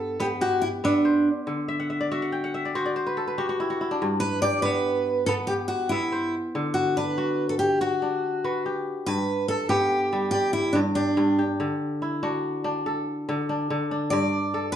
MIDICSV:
0, 0, Header, 1, 3, 480
1, 0, Start_track
1, 0, Key_signature, 1, "major"
1, 0, Tempo, 424028
1, 1653, Time_signature, 12, 3, 24, 8
1, 6927, Tempo, 420757
1, 16782, End_track
2, 0, Start_track
2, 0, Title_t, "Steel-string acoustic guitar"
2, 0, Program_c, 0, 25
2, 0, Note_on_c, 0, 69, 83
2, 229, Note_on_c, 0, 67, 85
2, 243, Note_off_c, 0, 69, 0
2, 291, Note_off_c, 0, 67, 0
2, 468, Note_on_c, 0, 66, 79
2, 697, Note_on_c, 0, 64, 78
2, 706, Note_off_c, 0, 66, 0
2, 761, Note_off_c, 0, 64, 0
2, 959, Note_on_c, 0, 62, 72
2, 1449, Note_off_c, 0, 62, 0
2, 4754, Note_on_c, 0, 71, 91
2, 4997, Note_off_c, 0, 71, 0
2, 5002, Note_on_c, 0, 74, 94
2, 5227, Note_off_c, 0, 74, 0
2, 5232, Note_on_c, 0, 71, 80
2, 5954, Note_off_c, 0, 71, 0
2, 5958, Note_on_c, 0, 69, 94
2, 6024, Note_off_c, 0, 69, 0
2, 6192, Note_on_c, 0, 67, 83
2, 6259, Note_off_c, 0, 67, 0
2, 6429, Note_on_c, 0, 66, 81
2, 6670, Note_on_c, 0, 64, 88
2, 6684, Note_off_c, 0, 66, 0
2, 7180, Note_off_c, 0, 64, 0
2, 7634, Note_on_c, 0, 66, 81
2, 7889, Note_off_c, 0, 66, 0
2, 7897, Note_on_c, 0, 71, 78
2, 8489, Note_off_c, 0, 71, 0
2, 8493, Note_on_c, 0, 69, 67
2, 8546, Note_off_c, 0, 69, 0
2, 8604, Note_on_c, 0, 67, 80
2, 8854, Note_off_c, 0, 67, 0
2, 8858, Note_on_c, 0, 66, 64
2, 9770, Note_off_c, 0, 66, 0
2, 10287, Note_on_c, 0, 71, 86
2, 10760, Note_off_c, 0, 71, 0
2, 10765, Note_on_c, 0, 69, 81
2, 10997, Note_off_c, 0, 69, 0
2, 11002, Note_on_c, 0, 67, 86
2, 11693, Note_off_c, 0, 67, 0
2, 11707, Note_on_c, 0, 67, 87
2, 11954, Note_off_c, 0, 67, 0
2, 11959, Note_on_c, 0, 64, 79
2, 12184, Note_on_c, 0, 62, 75
2, 12212, Note_off_c, 0, 64, 0
2, 12252, Note_off_c, 0, 62, 0
2, 12440, Note_on_c, 0, 62, 73
2, 12947, Note_off_c, 0, 62, 0
2, 16035, Note_on_c, 0, 74, 86
2, 16736, Note_off_c, 0, 74, 0
2, 16740, Note_on_c, 0, 71, 87
2, 16782, Note_off_c, 0, 71, 0
2, 16782, End_track
3, 0, Start_track
3, 0, Title_t, "Kora"
3, 0, Program_c, 1, 46
3, 0, Note_on_c, 1, 43, 74
3, 0, Note_on_c, 1, 59, 78
3, 0, Note_on_c, 1, 67, 60
3, 217, Note_off_c, 1, 59, 0
3, 222, Note_on_c, 1, 59, 81
3, 459, Note_off_c, 1, 67, 0
3, 464, Note_on_c, 1, 67, 60
3, 944, Note_off_c, 1, 59, 0
3, 948, Note_on_c, 1, 59, 76
3, 950, Note_on_c, 1, 76, 65
3, 1187, Note_on_c, 1, 72, 61
3, 1415, Note_off_c, 1, 43, 0
3, 1663, Note_on_c, 1, 50, 71
3, 1902, Note_off_c, 1, 76, 0
3, 1906, Note_on_c, 1, 76, 69
3, 2033, Note_on_c, 1, 78, 64
3, 2101, Note_off_c, 1, 67, 0
3, 2144, Note_off_c, 1, 76, 0
3, 2149, Note_on_c, 1, 76, 62
3, 2270, Note_on_c, 1, 74, 71
3, 2390, Note_off_c, 1, 76, 0
3, 2394, Note_on_c, 1, 66, 77
3, 2394, Note_on_c, 1, 76, 69
3, 2510, Note_off_c, 1, 78, 0
3, 2515, Note_on_c, 1, 78, 61
3, 2531, Note_off_c, 1, 72, 0
3, 2629, Note_on_c, 1, 79, 68
3, 2756, Note_off_c, 1, 78, 0
3, 2760, Note_on_c, 1, 78, 67
3, 2874, Note_off_c, 1, 76, 0
3, 2879, Note_on_c, 1, 76, 74
3, 2999, Note_off_c, 1, 74, 0
3, 3003, Note_on_c, 1, 74, 67
3, 3058, Note_off_c, 1, 59, 0
3, 3112, Note_off_c, 1, 66, 0
3, 3114, Note_on_c, 1, 72, 69
3, 3116, Note_on_c, 1, 66, 88
3, 3184, Note_off_c, 1, 79, 0
3, 3227, Note_off_c, 1, 74, 0
3, 3232, Note_on_c, 1, 74, 66
3, 3345, Note_off_c, 1, 72, 0
3, 3350, Note_on_c, 1, 72, 68
3, 3470, Note_on_c, 1, 71, 67
3, 3588, Note_on_c, 1, 69, 65
3, 3702, Note_off_c, 1, 71, 0
3, 3707, Note_on_c, 1, 71, 65
3, 3775, Note_off_c, 1, 72, 0
3, 3821, Note_off_c, 1, 66, 0
3, 3826, Note_on_c, 1, 66, 82
3, 3828, Note_on_c, 1, 67, 67
3, 3895, Note_off_c, 1, 78, 0
3, 3946, Note_off_c, 1, 66, 0
3, 3951, Note_on_c, 1, 66, 72
3, 4049, Note_off_c, 1, 76, 0
3, 4074, Note_on_c, 1, 64, 66
3, 4184, Note_off_c, 1, 66, 0
3, 4188, Note_on_c, 1, 66, 69
3, 4256, Note_off_c, 1, 67, 0
3, 4307, Note_off_c, 1, 64, 0
3, 4311, Note_on_c, 1, 64, 61
3, 4312, Note_off_c, 1, 50, 0
3, 4427, Note_on_c, 1, 62, 71
3, 4486, Note_off_c, 1, 74, 0
3, 4548, Note_on_c, 1, 43, 80
3, 4616, Note_off_c, 1, 66, 0
3, 5028, Note_on_c, 1, 67, 60
3, 5080, Note_off_c, 1, 69, 0
3, 5099, Note_off_c, 1, 71, 0
3, 5264, Note_on_c, 1, 59, 82
3, 5976, Note_off_c, 1, 59, 0
3, 5981, Note_on_c, 1, 59, 86
3, 6085, Note_off_c, 1, 64, 0
3, 6223, Note_off_c, 1, 67, 0
3, 6228, Note_on_c, 1, 67, 65
3, 6328, Note_off_c, 1, 62, 0
3, 6691, Note_off_c, 1, 59, 0
3, 6695, Note_on_c, 1, 76, 67
3, 6696, Note_on_c, 1, 59, 81
3, 6931, Note_on_c, 1, 72, 63
3, 7199, Note_off_c, 1, 43, 0
3, 7418, Note_on_c, 1, 50, 75
3, 7833, Note_off_c, 1, 67, 0
3, 7872, Note_off_c, 1, 76, 0
3, 7894, Note_on_c, 1, 62, 60
3, 8133, Note_on_c, 1, 66, 77
3, 8286, Note_off_c, 1, 72, 0
3, 8820, Note_off_c, 1, 59, 0
3, 8849, Note_off_c, 1, 66, 0
3, 8853, Note_on_c, 1, 66, 79
3, 9091, Note_off_c, 1, 62, 0
3, 9095, Note_on_c, 1, 62, 62
3, 9574, Note_off_c, 1, 66, 0
3, 9579, Note_on_c, 1, 66, 70
3, 9582, Note_on_c, 1, 71, 63
3, 9822, Note_on_c, 1, 67, 62
3, 10088, Note_off_c, 1, 50, 0
3, 10299, Note_on_c, 1, 43, 75
3, 10368, Note_off_c, 1, 66, 0
3, 10783, Note_on_c, 1, 69, 61
3, 10984, Note_off_c, 1, 71, 0
3, 11008, Note_off_c, 1, 67, 0
3, 11011, Note_off_c, 1, 62, 0
3, 11011, Note_on_c, 1, 59, 80
3, 11013, Note_on_c, 1, 67, 69
3, 11497, Note_on_c, 1, 55, 79
3, 11740, Note_on_c, 1, 74, 68
3, 12199, Note_off_c, 1, 43, 0
3, 12213, Note_on_c, 1, 43, 77
3, 12286, Note_off_c, 1, 69, 0
3, 12443, Note_off_c, 1, 67, 0
3, 12447, Note_on_c, 1, 67, 63
3, 12676, Note_off_c, 1, 43, 0
3, 12689, Note_on_c, 1, 43, 75
3, 12931, Note_off_c, 1, 67, 0
3, 12936, Note_on_c, 1, 67, 61
3, 13004, Note_off_c, 1, 74, 0
3, 13137, Note_off_c, 1, 59, 0
3, 13177, Note_on_c, 1, 50, 79
3, 13227, Note_off_c, 1, 43, 0
3, 13227, Note_off_c, 1, 55, 0
3, 13657, Note_on_c, 1, 64, 63
3, 13895, Note_on_c, 1, 62, 68
3, 13896, Note_on_c, 1, 66, 77
3, 13964, Note_off_c, 1, 67, 0
3, 14365, Note_off_c, 1, 62, 0
3, 14370, Note_on_c, 1, 62, 85
3, 14617, Note_on_c, 1, 69, 71
3, 15089, Note_off_c, 1, 50, 0
3, 15103, Note_on_c, 1, 50, 80
3, 15334, Note_off_c, 1, 62, 0
3, 15338, Note_on_c, 1, 62, 70
3, 15445, Note_off_c, 1, 64, 0
3, 15564, Note_off_c, 1, 66, 0
3, 15566, Note_off_c, 1, 50, 0
3, 15580, Note_on_c, 1, 50, 77
3, 15814, Note_off_c, 1, 62, 0
3, 15818, Note_on_c, 1, 62, 63
3, 16061, Note_on_c, 1, 43, 78
3, 16101, Note_off_c, 1, 50, 0
3, 16121, Note_off_c, 1, 69, 0
3, 16534, Note_on_c, 1, 69, 66
3, 16782, Note_off_c, 1, 43, 0
3, 16782, Note_off_c, 1, 62, 0
3, 16782, Note_off_c, 1, 69, 0
3, 16782, End_track
0, 0, End_of_file